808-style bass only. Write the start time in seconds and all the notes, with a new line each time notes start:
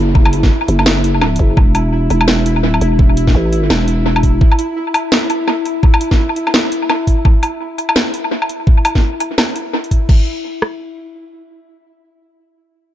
Already playing: F#1
0.69 F#1
1.39 F#1
1.57 E1
2.11 E1
2.60 D#1
2.82 E1
3.35 A1
3.70 E1